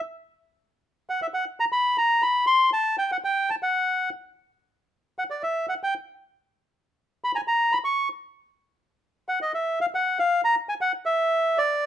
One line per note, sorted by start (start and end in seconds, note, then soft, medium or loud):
1.10 1.20 F#5 medium
1.22 1.27 E5 medium
1.34 1.45 F#5 medium
1.60 1.65 A#5 medium
1.72 1.97 B5 medium
1.98 2.22 A#5 medium
2.22 2.45 B5 medium
2.47 2.70 C6 medium
2.73 2.96 A5 medium
2.98 3.11 G5 medium
3.12 3.17 F#5 medium
3.24 3.50 G5 medium
3.50 3.55 A5 medium
3.63 4.10 F#5 medium
5.19 5.24 F#5 medium
5.30 5.42 D5 medium
5.43 5.66 E5 medium
5.69 5.74 F#5 medium
5.83 5.94 G5 medium
7.24 7.32 B5 medium
7.35 7.41 G#5 medium
7.35 7.37 A#5 soft
7.48 7.74 A#5 medium
7.72 7.78 B5 medium
7.84 8.09 C#6 medium
9.29 9.39 F#5 medium
9.42 9.52 D#5 medium
9.54 9.79 E5 medium
9.81 9.86 F5 medium
9.95 10.19 F#5 medium
10.19 10.41 F5 medium
10.45 10.55 A#5 medium
10.69 10.74 G#5 medium
10.81 10.92 F#5 medium
11.06 11.58 E5 medium
11.58 11.86 D5 medium